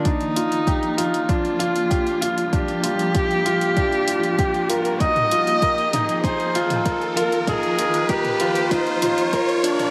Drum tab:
HH |xxxxxxxxxxxxxxxx|xxxxxxxxxxxxxxxx|xxxxxxxxxxxxxxxx|xxxxxxxxxxxxxxxx|
T2 |----------------|----------------|-o----o----o----|o----o----o----o|
BD |o---o---o---o---|o---o---o---o---|o---o---o---o---|o---o---o---o---|